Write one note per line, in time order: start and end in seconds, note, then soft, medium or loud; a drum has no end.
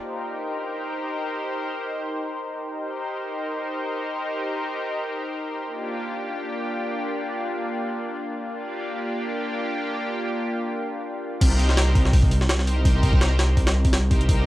0.00 2.77 D#4 medium
0.00 2.77 G4 medium
0.00 2.77 A#4 medium
0.00 2.77 C5 loud
2.79 5.64 D#4 medium
2.79 5.64 G4 medium
2.79 5.64 A#4 medium
2.79 5.64 C5 loud
5.67 8.52 A#3 medium
5.67 8.52 D4 medium
5.67 8.52 F4 medium
5.67 8.52 G4 loud
8.54 11.39 A#3 medium
8.54 11.39 D4 medium
8.54 11.39 F4 medium
8.54 11.39 G4 loud
11.41 12.93 C2 loud
11.41 12.29 D#4 medium
11.41 12.29 G4 medium
11.41 12.29 A#4 medium
11.41 12.29 C5 loud
11.41 kick loud
11.41 open hi-hat medium
11.41 crash medium
11.59 open hi-hat medium
11.69 snare medium
11.77 snare loud
11.77 open hi-hat medium
11.95 kick medium
11.95 open hi-hat medium
12.05 snare medium
12.13 kick loud
12.13 open hi-hat medium
12.23 kick loud
12.31 open hi-hat medium
12.41 snare soft
12.49 snare loud
12.49 open hi-hat medium
12.59 snare soft
12.67 12.83 D#4 medium
12.67 12.83 G4 medium
12.67 12.83 A#4 medium
12.67 12.83 C5 loud
12.67 open hi-hat medium
12.85 13.73 D#4 medium
12.85 13.73 G4 medium
12.85 13.73 A#4 medium
12.85 13.73 C5 loud
12.85 kick loud
12.85 open hi-hat medium
12.95 13.55 C2 loud
13.03 kick medium
13.03 open hi-hat medium
13.13 kick medium
13.21 snare loud
13.21 open hi-hat medium
13.39 snare loud
13.39 open hi-hat medium
13.57 14.37 C2 medium
13.57 kick medium
13.57 open hi-hat medium
13.67 snare loud
13.67 open hi-hat medium
13.85 kick medium
13.85 open hi-hat medium
13.93 snare loud
13.93 open hi-hat medium
14.10 14.27 D#4 loud
14.10 14.27 G4 medium
14.10 14.27 A#4 medium
14.10 14.27 C5 loud
14.10 kick medium
14.10 open hi-hat medium
14.21 closed hi-hat soft
14.28 14.46 D#4 medium
14.28 14.46 G4 medium
14.28 14.46 A#4 medium
14.28 14.46 C5 loud
14.28 kick loud
14.28 open hi-hat loud
14.38 14.46 C2 loud